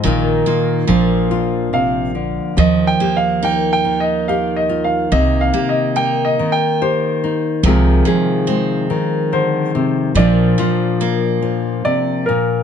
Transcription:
<<
  \new Staff \with { instrumentName = "Grand piano" } { \time 3/4 \key bes \mixolydian \tempo 4 = 71 ees''8 r4. f''4 | \tuplet 3/2 { ees''8 g''8 f''8 g''8 g''8 ees''8 f''8 ees''8 f''8 } | \tuplet 3/2 { ees''8 f''8 ees''8 g''8 ees''8 g''8 } c''4~ | c''2 c''4 |
d''2 d''8 bes'8 | }
  \new Staff \with { instrumentName = "Nylon-string guitar" } { \time 3/4 \key bes \mixolydian << { <ees bes ees' f'>8 f'8 <f bes d' f'>8 f'4.~ | f'8 g'8 bes4 g'8 f'8 | r8 g'8 bes4 g'8 ees'8 | <ees aes f' aes'>8 aes'8 aes2 |
<f bes d' f'>8 f'8 bes2 | } \\ { bes,4 bes,4 c8 d8 | ees,4. ees4. | c4. ees4. | c4. ees8 d8 c8 |
bes,4. f8 c8 bes,8 | } >> }
  \new Staff \with { instrumentName = "Steel-string acoustic guitar" } { \time 3/4 \key bes \mixolydian ees8 bes8 f2 | f8 bes8 ees'2 | bes8 bes8 ees'2 | f8 f8 c'2 |
f8 f8 bes2 | }
  \new Staff \with { instrumentName = "Upright bass" } { \clef bass \time 3/4 \key bes \mixolydian bes,,8 r8 bes,,2 | ees,8 r2 r8 | c,8 r2 r8 | c,8 r2 r8 |
bes,,8 r2 r8 | }
>>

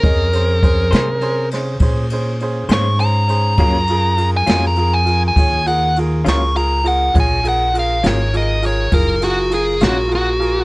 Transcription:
<<
  \new Staff \with { instrumentName = "Lead electric guitar" } { \time 12/8 \key ges \lydian \tempo 4. = 68 bes'2~ bes'8 r2 des'''8 bes''4~ | bes''4~ bes''16 aes''8 bes''8 aes''8 aes''8. ges''8 r8 des'''8 bes''8 ges''8 | aes''8 ges''8 f''8 des''8 ees''8 des''8 bes'8 ges'8 aes'8 ges'8 ges'4 | }
  \new Staff \with { instrumentName = "Upright piano" } { \time 12/8 \key ges \lydian <des' aes' ees''>8 <des' aes' c''>8 <des' aes' c''>8 <des' aes' c''>8 <des' aes' c''>8 <des' aes' c''>8 <des' aes' c''>8 <des' aes' c''>8 <des' aes' c''>8 <des' aes' c''>8 <des' aes' c''>8 <des' aes' c''>8 | <f' aes' bes'>8 <f' aes' bes'>8 <f' aes' bes'>8 <f' aes' bes'>8 <f' aes' bes'>8 <f' aes' bes'>8 <f' aes' des''>8 <f' aes' bes'>8 <f' aes' bes'>8 <f' aes' bes'>8 <f' aes' bes'>8 <f' aes' bes'>8 | <f' aes' des''>8 <f' aes' bes'>8 <f' aes' bes'>8 <f' aes' bes'>8 <f' aes' bes'>8 <f' aes' bes'>8 <f' aes' bes'>8 <f' aes' bes'>8 <f' aes' bes'>8 <f' aes' bes'>8 <f' aes' bes'>8 <f' aes' bes'>8 | }
  \new Staff \with { instrumentName = "Clean electric guitar" } { \time 12/8 \key ges \lydian r4. <bes des' aes' c''>8 r2 r8 <bes des' aes' c''>8 r4 | <ges bes des' f'>8 r4 <ges bes des' f'>8 r2 r8 <ges bes des' f'>8 r4 | r4. <ges bes des' f'>8 r2 r8 <ges bes des' f'>8 r4 | }
  \new Staff \with { instrumentName = "Upright bass" } { \clef bass \time 12/8 \key ges \lydian f,4. c4. bes,4. aes,4. | ges,4. f,4. ees,4. des,4. | bes,,4. aes,,4. ges,,4. bes,,4. | }
  \new DrumStaff \with { instrumentName = "Drums" } \drummode { \time 12/8 <bd cymr>8 cymr8 <bd cymr>8 <cymr sn>8 cymr8 <cymr sn>8 <bd cymr>8 cymr8 cymr8 <cymr sn>8 cymr8 cymr8 | <bd cymr>8 cymr8 cymr8 <cymr sn>8 cymr8 cymr8 <bd cymr>8 cymr8 cymr8 <cymr sn>8 cymr8 cymr8 | <bd cymr>8 cymr8 cymr8 <cymr sn>8 cymr8 cymr8 <bd cymr>8 cymr8 cymr8 <cymr sn>8 cymr8 cymr8 | }
>>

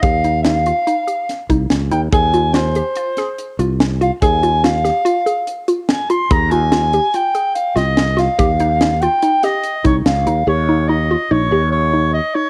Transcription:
<<
  \new Staff \with { instrumentName = "Soprano saxophone" } { \time 5/4 \key ees \mixolydian \tempo 4 = 144 f''4 f''2~ f''8 r4 g''8 | aes''4 c''2~ c''8 r4 f''8 | aes''4 f''2~ f''8 r8 aes''8 c'''8 | bes''8 aes''4. g''4 f''8 ees''4 f''8~ |
f''4. g''4 ees''4 des''8 f''4 | des''4 ees''4 des''4 des''4 ees''8 des''8 | }
  \new Staff \with { instrumentName = "Synth arpeggio sound" } { \time 5/4 \key ees \mixolydian g'8 ees'8 ees'8 f'8 ees'8 g'4 ees'4 ees'8 | aes'8 f'8 f'8 g'8 f'8 aes'4 f'4 f'8 | aes'8 f'8 f'8 g'8 f'8 aes'4 f'4 f'8 | aes'8 f'8 f'8 g'8 f'8 aes'4 f'4 f'8 |
g'8 ees'8 ees'8 f'8 ees'8 g'4 ees'4 ees'8 | g'8 ees'8 ees'8 f'8 ees'8 g'4 ees'4 ees'8 | }
  \new Staff \with { instrumentName = "Fretless electric bass" } { \clef bass \time 5/4 \key ees \mixolydian ees,2 r4. c,8 des,8 ees,8 | ees,2 r4. c,4. | ees,2 r2. | ees,2 r4. c,4. |
ees,2 r4. c,8 des,8 ees,8 | ees,2 bes,,8 ees,2 r8 | }
  \new DrumStaff \with { instrumentName = "Drums" } \drummode { \time 5/4 <hh bd>8 hh8 <hh sn>8 hh8 hh8 hh8 <hh sn>8 <hh bd>8 <hh sn>8 hh8 | <hh bd>8 hh8 <hh sn>8 hh8 hh8 <hh sn>8 hh8 hh8 <hh sn>8 hh8 | <hh bd>8 hh8 <hh sn>8 <hh sn>8 hh8 hh8 hh8 hh8 <hh sn>8 hh8 | <hh bd>8 hh8 <hh sn>8 hh8 hh8 hh8 hh8 <hh sn>8 <hh sn>8 <hh sn>8 |
<hh bd>8 hh8 <hh sn>8 hh8 hh8 <hh sn>8 hh8 <hh bd>8 <hh sn>8 hh8 | r4 r4 r4 r4 r4 | }
>>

